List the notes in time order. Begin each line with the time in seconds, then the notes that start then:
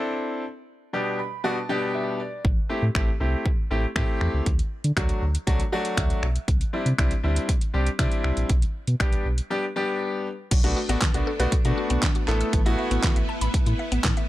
Already playing: C4 D4 E4 A4
0.93 B2 G3 B3 D4 G4
1.19 B5
1.44 B2 G3 B3 D4 F#4 A5
1.69 B2 G3 B3 D4 G4 G5
1.95 E5
2.20 D5
2.45 A1, kick
2.69 A3 C4 E4 G4
2.82 A2
2.95 A1 A3 C4 E4 G4, finger snap, kick
3.20 C2 A3 C4 E4 G4
3.46 kick
3.71 A1 A3 C4 E4 G4
3.96 A2 A3 C4 E4 G4, finger snap, kick
4.21 E2, finger snap
4.34 C#2
4.46 D2, kick, closed hi-hat
4.59 closed hi-hat
4.84 D3, closed hi-hat
4.97 D2 F#3 A3 D4 F#4, finger snap, kick, closed hi-hat
5.09 closed hi-hat
5.22 D2
5.35 closed hi-hat
5.47 C2 F#3 A3 D4 F#4, kick, closed hi-hat
5.60 closed hi-hat
5.72 F#3 A3 D4 F#4
5.85 closed hi-hat
5.97 D2 E5, finger snap, kick, closed hi-hat
6.10 closed hi-hat
6.23 B1, finger snap
6.36 closed hi-hat
6.48 C2, kick, closed hi-hat
6.61 closed hi-hat
6.73 G3 C4 D4 E4
6.86 C3, closed hi-hat
6.98 C2 G3 C4 D4 E4, finger snap, kick, closed hi-hat
7.11 closed hi-hat
7.24 D2 G3 C4 D4 E4
7.36 closed hi-hat
7.49 kick, closed hi-hat
7.61 closed hi-hat
7.74 C2 G3 C4 D4 G4
7.87 closed hi-hat
7.99 C3 G3 C4 D4 E4, finger snap, kick, closed hi-hat
8.12 closed hi-hat
8.24 C2, finger snap
8.37 A#1, closed hi-hat
8.49 B1, kick, closed hi-hat
8.62 closed hi-hat
8.87 B2, closed hi-hat
9.00 B1 G3 B3 D4 G4, finger snap, kick, closed hi-hat
9.13 closed hi-hat
9.25 B1
9.38 closed hi-hat
9.50 G3 B3 D4 G4
9.76 G3 B3 D4 G4
10.51 B1 F#3 A3 B3 D4 F#4, kick, closed hi-hat, crash
10.64 A3 B3 D4 F#4, closed hi-hat
10.77 F#4
10.89 A1 A3 B3 D4 F#4, closed hi-hat
11.02 kick, snare, clap, closed hi-hat
11.14 B1 A3 B3 D4 F#4, closed hi-hat
11.27 A4
11.39 B1 A3 B3 D4 F#4 B4, closed hi-hat
11.52 B2, kick, closed hi-hat
11.65 B2 A3 B3 D4 F#4, closed hi-hat
11.78 F#4
11.90 B1 B3, closed hi-hat
12.02 D4, kick, snare, clap, closed hi-hat
12.15 F#4, closed hi-hat
12.28 A1 A3 B3 E4 A4 E5, clap
12.41 E6, closed hi-hat
12.53 A1 E3, kick, closed hi-hat
12.65 A3 B3 E4 F#4, closed hi-hat
12.79 E5
12.91 A1 B3, closed hi-hat
13.04 kick, snare, clap, closed hi-hat
13.16 A1 E5, closed hi-hat
13.29 A5
13.41 A1 B5, closed hi-hat
13.54 A2, kick, closed hi-hat
13.66 A2 E4, closed hi-hat
13.79 E5
13.92 A1 B3, closed hi-hat
14.04 A2 E4, kick, snare, clap, closed hi-hat
14.17 E5, closed hi-hat